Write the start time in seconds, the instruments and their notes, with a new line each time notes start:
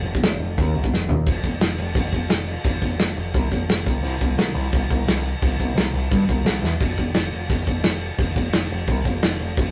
0.04 picked electric bass F1
0.15 kick
0.22 picked electric bass F1, snare, crash
0.40 picked electric bass F1
0.58 picked electric bass D#2, kick, crash
0.75 picked electric bass C2
0.84 kick
0.92 picked electric bass F1, snare
1.09 picked electric bass D#2, floor tom
1.27 picked electric bass F1, kick, crash
1.43 picked electric bass F1, kick, crash
1.61 picked electric bass F1, snare, crash
1.78 picked electric bass F1, crash
1.95 picked electric bass F1, kick, crash
2.12 picked electric bass F1, kick, crash
2.29 picked electric bass F1, snare, crash
2.48 crash
2.64 picked electric bass F1, kick, crash
2.82 picked electric bass F1, kick, crash
2.98 picked electric bass F1, snare, crash
3.16 picked electric bass F1, crash
3.34 picked electric bass C2, kick, crash
3.52 picked electric bass F1, kick, crash
3.69 picked electric bass F1, snare, crash
3.86 picked electric bass C2, kick, crash
4.03 picked electric bass C2, crash
4.21 picked electric bass C2, kick, crash
4.37 picked electric bass C2, snare, crash
4.54 picked electric bass C2, crash
4.73 picked electric bass C2, kick, crash
4.91 picked electric bass C2, kick, crash
5.07 picked electric bass C2, snare, crash
5.26 crash
5.42 picked electric bass C2, kick, crash
5.60 picked electric bass C2, kick, crash
5.75 picked electric bass C2, snare, crash
5.93 picked electric bass C2, crash
6.11 picked electric bass G2, kick, crash
6.29 picked electric bass C2, kick, crash
6.45 picked electric bass C2, snare, crash
6.62 picked electric bass E2, snare
6.80 picked electric bass F1, kick, crash
6.97 picked electric bass F1, kick, crash
7.14 picked electric bass F1, snare, crash
7.32 picked electric bass F1, crash
7.49 picked electric bass F1, kick, crash
7.66 picked electric bass F1, kick, crash
7.83 picked electric bass F1, snare, crash
8.01 crash
8.18 picked electric bass F1, kick, crash
8.36 picked electric bass F1, kick, crash
8.53 picked electric bass F1, snare, crash
8.70 picked electric bass F1, crash
8.87 picked electric bass C2, kick, crash
9.05 picked electric bass F1, kick, crash
9.22 picked electric bass F1, snare, crash
9.40 picked electric bass F1, crash
9.57 picked electric bass F1, kick, crash